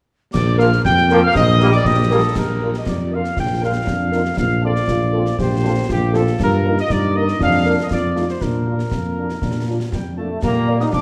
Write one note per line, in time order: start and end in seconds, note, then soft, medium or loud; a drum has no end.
0.33 0.77 A#1 loud
0.33 0.58 D5 medium
0.33 0.61 D6 medium
0.33 concert bass drum medium
0.33 snare medium
0.33 crash medium
0.58 0.68 F3 medium
0.58 0.68 A#3 medium
0.58 0.68 F4 medium
0.58 0.68 A#4 medium
0.58 0.70 F5 loud
0.58 0.84 F6 medium
0.58 snare medium
0.72 snare medium
0.84 1.27 F2 loud
0.84 1.20 G5 loud
0.84 1.20 G6 loud
0.84 concert bass drum medium
0.84 snare medium
0.97 snare medium
1.09 1.19 F3 loud
1.09 1.20 A#3 medium
1.09 1.19 A#3 loud
1.09 1.19 F4 medium
1.09 1.20 A#4 medium
1.09 snare medium
1.23 1.36 F5 loud
1.23 1.36 F6 loud
1.34 1.77 A#1 loud
1.34 1.71 D#5 loud
1.34 1.71 D#6 loud
1.34 concert bass drum loud
1.34 snare medium
1.60 1.70 G3 loud
1.60 1.69 A#3 medium
1.60 1.70 A#3 loud
1.60 1.69 G4 medium
1.60 1.69 A#4 medium
1.60 snare medium
1.72 1.87 D5 loud
1.72 1.85 D6 medium
1.72 snare medium
1.84 2.27 A#1 medium
1.84 2.10 G4 medium
1.84 2.33 D#5 loud
1.84 2.35 D#6 loud
1.84 concert bass drum medium
1.84 snare medium
2.11 2.20 G3 medium
2.11 2.20 A#3 medium
2.11 2.20 G4 medium
2.11 2.37 A4 medium
2.11 2.20 A#4 medium
2.35 2.78 A#1 medium
2.35 2.87 G4 medium
2.35 2.75 A#4 medium
2.35 concert bass drum medium
2.35 snare medium
2.35 crash soft
2.61 2.70 D4 soft
2.61 2.70 F4 medium
2.61 2.70 A#4 medium
2.74 2.87 D#5 medium
2.74 snare medium
2.86 3.29 F2 medium
2.86 3.89 F4 medium
2.86 3.13 D5 medium
2.86 concert bass drum medium
2.86 snare medium
3.12 3.21 D4 medium
3.12 3.21 F4 medium
3.12 3.21 A#4 medium
3.12 3.38 F5 medium
3.24 snare soft
3.37 3.79 A#1 medium
3.37 3.62 G5 medium
3.37 concert bass drum medium
3.37 snare medium
3.62 3.71 D4 soft
3.62 3.71 F4 medium
3.62 3.71 A#4 medium
3.62 4.35 F5 medium
3.87 4.29 F2 medium
3.87 4.13 D4 medium
3.87 concert bass drum medium
3.87 snare medium
4.12 4.22 D4 medium
4.12 4.25 D#4 medium
4.12 4.21 F4 medium
4.12 4.21 A#4 medium
4.12 snare medium
4.25 snare medium
4.37 4.80 A#1 medium
4.37 4.85 F4 medium
4.37 4.61 F5 medium
4.37 concert bass drum medium
4.37 snare medium
4.62 4.71 C4 medium
4.62 4.71 F4 medium
4.62 4.71 A4 medium
4.62 5.35 D5 medium
4.76 snare medium
4.88 5.30 A#1 medium
4.88 5.35 F4 medium
4.88 concert bass drum medium
4.88 snare medium
5.13 5.23 C4 medium
5.13 5.22 F4 medium
5.13 5.22 A4 medium
5.26 snare medium
5.38 5.81 A#1 medium
5.38 5.91 G4 medium
5.38 5.90 C5 medium
5.38 concert bass drum medium
5.38 snare medium
5.63 5.73 C4 medium
5.63 5.73 F4 medium
5.63 5.72 A4 medium
5.89 6.31 A#1 medium
5.89 6.89 F4 medium
5.89 6.14 G4 loud
5.89 concert bass drum medium
5.89 snare medium
6.13 6.23 C4 medium
6.13 6.23 F4 medium
6.13 6.23 A4 medium
6.13 6.40 A4 medium
6.13 snare medium
6.27 snare medium
6.40 6.82 G2 medium
6.40 6.76 A#4 loud
6.40 concert bass drum medium
6.40 snare medium
6.40 crash soft
6.65 6.74 A#3 medium
6.65 6.74 D#4 medium
6.65 6.74 A#4 medium
6.78 6.91 D#5 loud
6.78 snare medium
6.90 7.32 G2 medium
6.90 7.37 D#4 medium
6.90 7.16 D5 loud
6.90 concert bass drum medium
6.90 snare medium
7.15 7.24 A#3 medium
7.15 7.24 D#4 medium
7.15 7.24 A#4 medium
7.15 7.41 D#5 loud
7.28 snare medium
7.39 7.78 F2 medium
7.39 7.88 D4 medium
7.39 7.76 F5 loud
7.39 concert bass drum medium
7.39 snare medium
7.66 7.75 A#3 medium
7.66 7.75 D4 medium
7.66 7.75 A#4 medium
7.81 7.86 D#5 medium
7.90 8.33 F2 medium
7.90 8.38 F4 medium
7.90 8.27 D5 medium
7.90 concert bass drum medium
7.90 snare medium
8.15 8.24 A3 medium
8.15 8.25 D#4 soft
8.15 8.25 F4 soft
8.15 snare medium
8.29 8.42 C5 medium
8.29 snare medium
8.41 8.84 A#2 medium
8.41 8.84 D4 medium
8.41 9.92 A#4 medium
8.41 concert bass drum medium
8.41 snare medium
8.67 8.76 A#3 soft
8.67 8.76 D4 soft
8.67 8.76 F4 soft
8.79 snare soft
8.91 9.34 F2 medium
8.91 9.27 A#3 medium
8.91 concert bass drum medium
8.91 snare medium
9.17 9.27 A#3 soft
9.17 9.27 D4 soft
9.17 9.26 F4 soft
9.29 9.36 D#4 soft
9.29 snare soft
9.42 9.84 A#2 medium
9.42 9.66 D4 soft
9.42 concert bass drum medium
9.42 snare medium
9.67 9.77 A#3 soft
9.67 9.76 D4 soft
9.67 9.76 F4 soft
9.67 9.79 F4 medium
9.91 10.35 F2 soft
9.91 10.03 G3 medium
9.91 10.04 G4 medium
9.91 10.16 G5 medium
9.91 concert bass drum medium
9.91 snare medium
10.17 10.41 A3 medium
10.17 10.27 A#3 soft
10.17 10.27 D4 soft
10.17 10.28 F4 soft
10.17 10.27 F4 soft
10.17 10.41 A5 soft
10.42 10.85 A#2 medium
10.42 10.96 G3 medium
10.42 10.78 A#3 medium
10.42 10.78 A#5 medium
10.42 concert bass drum medium
10.42 snare medium
10.42 crash soft
10.68 10.77 A#4 medium
10.68 10.77 D5 medium
10.68 10.77 F5 medium
10.80 10.94 D#4 medium
10.80 10.86 D#6 medium
10.80 snare soft
10.91 11.02 F2 medium
10.91 11.02 F3 medium
10.91 11.02 D4 medium
10.91 11.02 D6 medium
10.91 concert bass drum medium
10.91 snare medium